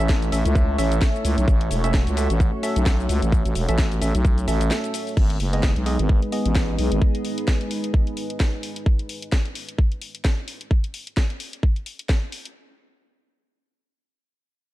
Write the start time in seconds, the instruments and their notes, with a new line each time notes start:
Already playing: analog synth pad A3 E4 C#5, ambient pad C#4 A4 E5 A5
0.00 fm bass A1, synth stab C#4 A4 E5, shaker
0.09 kick, snare, shaker
0.22 closed hi-hat, shaker
0.32 fm bass A1, synth stab C#4 A4 E5, open hi-hat, shaker
0.45 fm bass C#2, closed hi-hat, shaker
0.55 kick, shaker
0.78 fm bass A1, synth stab C#4 A4 E5, open hi-hat, shaker
0.92 closed hi-hat, shaker
1.01 kick, snare, shaker
1.16 shaker
1.25 fm bass C#2, open hi-hat, shaker
1.38 fm bass B1, closed hi-hat, shaker
1.48 fm bass A1, analog synth pad F#4, kick, shaker
1.61 closed hi-hat
1.71 fm bass E1, open hi-hat, shaker
1.84 synth stab C#4 A4 E5, closed hi-hat, shaker
1.94 kick, snare, shaker
2.07 fm bass C#2, closed hi-hat, shaker
2.17 synth stab C#4 A4 E5, open hi-hat, shaker
2.30 fm bass A1, closed hi-hat, shaker
2.40 kick, shaker
2.63 synth stab C#4 A4 E5, open hi-hat, shaker
2.76 fm bass B1, closed hi-hat, shaker
2.86 kick, snare, shaker
3.00 shaker
3.09 fm bass C#2, open hi-hat, shaker
3.22 fm bass A1, closed hi-hat, shaker
3.32 kick, shaker
3.46 fm bass A1, closed hi-hat, shaker
3.55 fm bass E1, open hi-hat, shaker
3.69 fm bass A1, synth stab C#4 A4 E5, closed hi-hat, shaker
3.78 kick, snare, shaker
3.92 closed hi-hat, shaker
4.02 fm bass A1, synth stab C#4 A4 E5, open hi-hat, shaker
4.15 fm bass B1, closed hi-hat, shaker
4.25 kick, shaker
4.38 closed hi-hat, shaker
4.48 fm bass A1, synth stab C#4 A4 E5, open hi-hat, shaker
4.61 closed hi-hat, shaker
4.71 snare, shaker
4.84 closed hi-hat, shaker
4.94 open hi-hat, shaker
5.07 open hi-hat, shaker
5.17 fm bass G#1, analog synth pad G#3 D#4 B4, ambient pad B3, kick, crash
5.30 closed hi-hat
5.40 fm bass F#1, ambient pad G#4, open hi-hat
5.53 synth stab B3 G#4 D#5, closed hi-hat
5.59 ambient pad D#5 G#5
5.63 kick, snare
5.76 fm bass B1, closed hi-hat
5.86 synth stab B3 G#4 D#5, open hi-hat
5.99 fm bass G#1, closed hi-hat
6.09 kick
6.22 closed hi-hat
6.32 synth stab B3 G#4 D#5, open hi-hat
6.46 fm bass A1, closed hi-hat
6.55 kick, snare
6.79 fm bass B1, open hi-hat
6.92 fm bass G#1, closed hi-hat
7.02 kick
7.15 closed hi-hat
7.25 open hi-hat
7.38 closed hi-hat
7.48 kick, snare
7.61 closed hi-hat
7.71 open hi-hat
7.84 closed hi-hat
7.94 kick
8.07 closed hi-hat
8.17 open hi-hat
8.30 closed hi-hat
8.40 kick, snare
8.63 open hi-hat
8.76 closed hi-hat
8.86 kick
8.99 closed hi-hat
9.09 open hi-hat
9.22 closed hi-hat
9.32 kick, snare
9.45 closed hi-hat
9.55 open hi-hat
9.69 closed hi-hat
9.78 kick
9.92 closed hi-hat
10.02 open hi-hat
10.15 closed hi-hat
10.25 kick, snare
10.48 open hi-hat
10.61 closed hi-hat
10.71 kick
10.84 closed hi-hat
10.94 open hi-hat
11.07 closed hi-hat
11.17 kick, snare
11.30 closed hi-hat
11.40 open hi-hat
11.53 closed hi-hat
11.63 kick
11.76 closed hi-hat
11.86 open hi-hat
11.99 closed hi-hat
12.09 kick, snare
12.32 open hi-hat
12.45 closed hi-hat